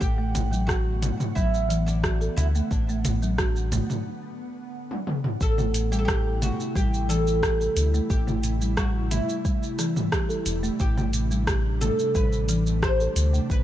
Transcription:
0.00 1.11 A1 medium
0.00 5.37 D3 medium
0.00 5.37 B3 medium
0.00 0.66 G4 medium
0.00 5.37 F#5 medium
0.00 kick loud
0.00 shaker soft
0.18 0.50 A3 medium
0.35 cajon bass medium
0.35 closed hi-hat medium
0.35 mid tom medium
0.35 shaker medium
0.52 0.67 F#3 medium
0.52 shaker soft
0.67 1.35 F#4 medium
0.67 1.00 F#4 loud
0.67 kick loud
0.67 cross-stick medium
0.67 shaker soft
1.02 1.19 A3 medium
1.02 closed hi-hat medium
1.02 mid tom medium
1.02 shaker medium
1.20 cajon slap soft
1.20 mid tom medium
1.20 shaker soft
1.35 2.29 A1 medium
1.35 1.68 F#3 medium
1.35 1.83 E4 medium
1.35 kick loud
1.35 shaker soft
1.54 shaker soft
1.69 1.86 E3 medium
1.69 closed hi-hat medium
1.69 shaker medium
1.86 2.36 D4 medium
1.86 cajon slap medium
1.86 shaker soft
2.03 2.19 F#4 medium
2.03 kick medium
2.03 cross-stick medium
2.03 shaker soft
2.21 2.30 A4 loud
2.21 shaker soft
2.36 2.61 D2 medium
2.36 2.46 E4 medium
2.36 cajon bass medium
2.36 closed hi-hat medium
2.36 shaker medium
2.55 2.70 A3 medium
2.55 shaker soft
2.71 3.81 A1 medium
2.71 3.68 D4 medium
2.71 kick loud
2.71 shaker soft
2.89 3.21 A3 medium
2.89 shaker soft
3.05 cajon bass medium
3.05 cajon slap medium
3.05 closed hi-hat medium
3.05 mid tom medium
3.05 shaker medium
3.23 3.37 F#3 medium
3.23 shaker soft
3.38 3.71 F#4 loud
3.38 kick loud
3.38 cross-stick medium
3.38 shaker soft
3.56 shaker soft
3.72 3.89 A3 medium
3.72 cajon bass medium
3.72 closed hi-hat medium
3.72 mid tom medium
3.72 shaker medium
3.90 cajon slap soft
3.90 mid tom medium
3.90 shaker soft
4.91 high tom soft
5.07 mid tom medium
5.24 mid tom medium
5.41 6.51 A1 loud
5.41 13.63 C3 medium
5.41 13.63 G3 medium
5.41 13.63 A3 medium
5.41 10.76 E4 medium
5.41 5.91 A4 loud
5.41 kick loud
5.41 shaker soft
5.58 5.90 A3 medium
5.58 mid tom medium
5.58 shaker soft
5.74 closed hi-hat loud
5.74 shaker medium
5.92 6.06 G3 medium
5.92 5.98 G4 loud
5.92 shaker soft
5.99 6.05 A4 medium
6.05 6.43 G4 loud
6.05 6.40 G4 loud
6.05 kick loud
6.05 cross-stick loud
6.05 shaker soft
6.42 6.58 A3 medium
6.42 6.76 F#4 medium
6.42 closed hi-hat medium
6.42 mid tom medium
6.42 shaker medium
6.60 shaker soft
6.75 7.69 A1 medium
6.75 7.08 G3 loud
6.75 7.09 G4 loud
6.75 kick loud
6.75 shaker soft
6.94 shaker soft
7.09 7.26 E3 loud
7.09 8.09 A4 loud
7.09 closed hi-hat medium
7.09 shaker medium
7.27 shaker soft
7.43 7.59 G4 loud
7.43 kick loud
7.43 cross-stick loud
7.43 shaker soft
7.61 7.70 A4 loud
7.61 shaker soft
7.76 8.00 D2 medium
7.76 closed hi-hat loud
7.76 shaker medium
7.94 8.09 A3 loud
7.94 shaker soft
8.10 9.20 A1 medium
8.10 8.76 G4 medium
8.10 kick loud
8.10 shaker soft
8.27 8.60 A3 loud
8.27 mid tom medium
8.27 shaker soft
8.43 closed hi-hat medium
8.43 shaker medium
8.61 8.76 G3 medium
8.61 shaker soft
8.77 9.10 G3 loud
8.77 9.11 F#4 medium
8.77 kick loud
8.77 cross-stick loud
8.77 shaker soft
9.11 9.28 A3 medium
9.11 9.75 E4 medium
9.11 closed hi-hat loud
9.11 mid tom medium
9.11 shaker medium
9.29 shaker soft
9.45 9.77 G3 loud
9.45 kick loud
9.45 shaker soft
9.63 shaker soft
9.79 9.96 E3 medium
9.79 cross-stick soft
9.79 closed hi-hat loud
9.79 shaker medium
9.96 mid tom medium
9.96 shaker soft
10.12 10.28 G4 loud
10.12 kick loud
10.12 cross-stick loud
10.12 shaker soft
10.29 10.39 A4 loud
10.29 shaker soft
10.46 10.70 E1 loud
10.46 closed hi-hat medium
10.46 shaker medium
10.63 10.79 A3 loud
10.63 shaker soft
10.79 11.90 A1 medium
10.79 13.63 D4 medium
10.79 11.44 G4 loud
10.79 kick loud
10.79 shaker soft
10.97 11.29 A3 loud
10.97 mid tom medium
10.97 shaker soft
11.13 closed hi-hat medium
11.13 shaker medium
11.31 11.46 G3 medium
11.31 shaker soft
11.47 11.79 G4 loud
11.47 kick loud
11.47 cross-stick loud
11.47 shaker soft
11.81 11.98 A3 medium
11.81 12.12 A4 medium
11.81 closed hi-hat medium
11.81 mid tom medium
11.81 shaker medium
11.99 shaker soft
12.15 13.08 A1 medium
12.15 12.47 G3 loud
12.15 12.83 B4 loud
12.15 kick loud
12.15 shaker soft
12.33 shaker soft
12.49 12.65 E3 loud
12.49 closed hi-hat medium
12.49 shaker medium
12.67 shaker soft
12.82 12.98 G4 medium
12.82 13.51 C5 loud
12.82 kick loud
12.82 cross-stick medium
12.82 shaker soft
13.00 13.09 A4 loud
13.00 shaker soft
13.16 13.40 D2 medium
13.16 closed hi-hat medium
13.16 shaker medium
13.33 13.49 A3 loud
13.33 shaker soft
13.50 13.63 A1 medium
13.50 13.63 B4 loud
13.50 kick loud
13.50 shaker soft

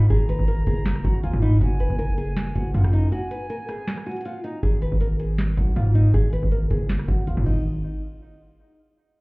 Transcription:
0.10 0.38 G#1 loud
0.10 0.25 G#4 loud
0.10 1.19 A#5 loud
0.10 kick loud
0.10 closed hi-hat medium
0.29 0.44 B4 medium
0.29 closed hi-hat medium
0.39 0.66 G#1 loud
0.39 kick loud
0.48 0.62 A#4 medium
0.48 closed hi-hat medium
0.67 1.03 F#1 loud
0.67 0.81 G#4 medium
0.67 kick loud
0.67 closed hi-hat medium
0.86 snare loud
0.86 clap medium
0.86 closed hi-hat medium
0.96 cross-stick medium
1.04 1.25 G#1 loud
1.04 1.19 F#4 medium
1.04 kick loud
1.04 closed hi-hat medium
1.23 1.33 D#2 loud
1.23 1.38 F4 medium
1.23 1.41 G#5 medium
1.23 closed hi-hat medium
1.33 1.60 G#2 loud
1.33 kick loud
1.42 1.57 D#4 medium
1.42 1.60 B5 medium
1.42 closed hi-hat medium
1.61 1.89 F#1 loud
1.61 1.76 F#4 loud
1.61 2.71 G#5 loud
1.61 kick loud
1.61 closed hi-hat medium
1.80 1.95 B4 medium
1.80 closed hi-hat medium
1.90 2.53 F#1 loud
1.90 kick loud
1.99 2.13 A#4 medium
1.99 closed hi-hat medium
2.18 2.32 G#4 medium
2.18 closed hi-hat medium
2.37 snare loud
2.37 clap medium
2.37 closed hi-hat medium
2.55 2.74 F#1 loud
2.55 2.70 F#4 medium
2.55 kick medium
2.55 closed hi-hat medium
2.74 3.11 F#2 loud
2.74 2.89 F4 medium
2.74 2.92 F#5 medium
2.74 kick medium
2.74 closed hi-hat medium
2.84 cross-stick loud
2.93 3.08 D#4 medium
2.93 3.11 A#5 medium
2.93 closed hi-hat medium
3.12 3.27 F#4 loud
3.12 4.21 G#5 loud
3.12 closed hi-hat medium
3.31 3.45 B4 medium
3.31 closed hi-hat medium
3.50 3.64 A#4 medium
3.50 closed hi-hat medium
3.69 3.83 G#4 medium
3.69 cross-stick medium
3.69 closed hi-hat medium
3.88 snare loud
3.88 clap medium
3.88 closed hi-hat medium
3.97 cross-stick medium
4.06 4.21 F#4 medium
4.06 closed hi-hat soft
4.11 closed hi-hat medium
4.16 closed hi-hat medium
4.21 closed hi-hat medium
4.25 4.40 F4 loud
4.25 4.43 F#5 medium
4.25 closed hi-hat medium
4.44 4.59 D#4 medium
4.44 4.62 A#5 medium
4.44 closed hi-hat medium
4.63 4.91 G#1 loud
4.63 4.78 G#4 loud
4.63 kick loud
4.63 closed hi-hat medium
4.82 4.96 B4 medium
4.82 closed hi-hat medium
4.92 5.55 G#1 loud
4.92 kick loud
5.01 5.15 A#4 medium
5.01 closed hi-hat medium
5.19 5.34 G#4 medium
5.19 closed hi-hat medium
5.38 snare loud
5.38 clap medium
5.38 closed hi-hat medium
5.57 5.75 B1 loud
5.57 5.72 F#4 medium
5.57 kick medium
5.57 closed hi-hat medium
5.76 6.12 G#2 loud
5.76 5.91 F4 medium
5.76 kick medium
5.76 closed hi-hat medium
5.95 6.10 D#4 medium
5.95 closed hi-hat medium
6.14 6.42 G#1 loud
6.14 6.29 G#4 loud
6.14 kick loud
6.14 closed hi-hat medium
6.33 6.47 B4 medium
6.33 closed hi-hat medium
6.43 6.69 G#1 loud
6.43 kick loud
6.52 6.66 A#4 medium
6.52 closed hi-hat medium
6.70 7.07 F#1 loud
6.70 6.85 G#4 medium
6.70 kick loud
6.70 closed hi-hat medium
6.89 snare loud
6.89 clap medium
6.89 closed hi-hat medium
6.99 cross-stick medium
7.08 7.29 G#1 loud
7.08 7.23 F#4 medium
7.08 kick loud
7.08 closed hi-hat medium
7.27 7.37 D#2 loud
7.27 7.42 F4 medium
7.27 closed hi-hat medium
7.37 7.45 G#2 loud
7.37 kick loud
7.46 7.81 G#1 loud
7.46 7.64 D#4 medium
7.46 kick loud
7.46 crash medium

